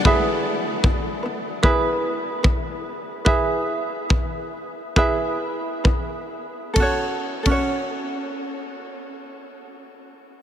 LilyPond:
<<
  \new Staff \with { instrumentName = "Ukulele" } { \time 4/4 \key e \mixolydian \tempo 4 = 69 <e' gis' b' e''>4 <e' b'>8 <e' b'>8 <e' gis' b' e''>4 <e' b'>8 r8 | <e' gis' b' e''>4 <e' b'>8 r8 <e' gis' b' e''>4 <e' b'>8 r8 | <cis' fis' a' cis''>16 r8 <cis' fis' a' cis''>2.~ <cis' fis' a' cis''>16 | }
  \new DrumStaff \with { instrumentName = "Drums" } \drummode { \time 4/4 bd4 bd4 bd4 bd4 | bd4 bd4 bd4 bd4 | <bd cymr>8. <bd cymr>16 r4 r4 r4 | }
>>